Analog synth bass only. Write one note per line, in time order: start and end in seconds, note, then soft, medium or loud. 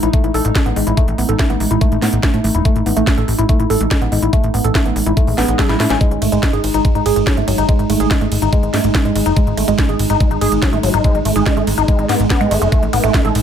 0.03 0.09 A1 medium
0.24 0.30 A1 medium
0.34 0.41 A1 loud
0.45 0.51 A1 medium
0.66 0.72 A1 medium
0.76 0.83 A1 loud
0.87 0.93 A1 medium
1.08 1.14 A1 medium
1.18 1.24 A1 medium
1.29 1.35 A1 medium
1.50 1.56 A1 medium
1.60 1.66 A1 loud
1.71 1.77 A1 medium
1.92 1.98 A1 medium
2.02 2.08 A2 loud
2.13 2.19 A1 medium
2.34 2.40 A2 medium
2.44 2.50 A1 loud
2.55 2.61 E1 loud
2.76 2.82 A1 medium
2.86 2.92 A1 medium
2.97 3.03 A1 medium
3.18 3.24 A1 medium
3.28 3.34 A1 loud
3.39 3.45 A1 medium
3.60 3.66 A1 medium
3.70 3.76 A1 loud
3.81 3.87 A1 medium
4.02 4.08 A1 medium
4.12 4.18 A1 loud
4.23 4.29 A1 medium
4.43 4.50 A1 medium
4.54 4.60 A1 loud
4.64 4.71 A1 medium
4.85 4.92 A1 medium
4.96 5.02 A1 loud
5.06 5.13 A1 medium
5.27 5.34 A1 medium
5.38 5.44 A1 loud
5.48 5.55 A1 medium
5.69 5.76 A1 medium
5.80 5.86 A2 loud
5.90 5.96 A1 medium
6.11 6.17 G#1 medium
6.22 6.28 G#1 loud
6.32 6.38 G#1 medium
6.53 6.59 G#1 medium
6.64 6.70 G#1 loud
6.74 6.80 G#1 medium
6.95 7.01 G#1 medium
7.06 7.12 G#1 loud
7.16 7.22 G#1 medium
7.37 7.43 G#1 medium
7.48 7.54 G#1 loud
7.58 7.64 G#1 medium
7.79 7.85 G#1 medium
7.90 7.96 G#1 medium
8.00 8.06 G#1 loud
8.21 8.27 G#1 medium
8.32 8.38 G#1 loud
8.42 8.48 G#1 medium
8.63 8.69 G#1 medium
8.74 8.80 G#2 loud
8.84 8.90 G#1 loud
9.05 9.11 G#2 medium
9.16 9.22 G#1 loud
9.26 9.32 F#1 medium
9.47 9.53 G#1 medium
9.57 9.64 G#1 loud
9.68 9.74 G#1 medium
9.89 9.95 G#1 medium
9.99 10.06 G#1 loud
10.10 10.16 G#1 medium
10.31 10.37 G#1 medium
10.41 10.48 G#1 loud
10.52 10.58 G#1 medium
10.73 10.79 G#1 medium
10.83 10.90 G#1 loud
10.94 11.00 G#1 medium
11.15 11.21 G#1 medium
11.25 11.31 G#1 loud
11.36 11.42 G#1 medium
11.57 11.63 G#1 medium
11.67 11.73 G#1 loud
11.78 11.84 G#1 medium
11.99 12.05 G#1 medium
12.09 12.15 G#2 loud
12.20 12.26 G#1 medium
12.41 12.47 G#2 medium
12.51 12.57 G#1 loud
12.62 12.68 F#1 medium
12.83 12.89 A1 medium
12.93 12.99 A1 medium
13.04 13.10 A1 medium
13.25 13.31 A1 medium
13.35 13.41 A1 loud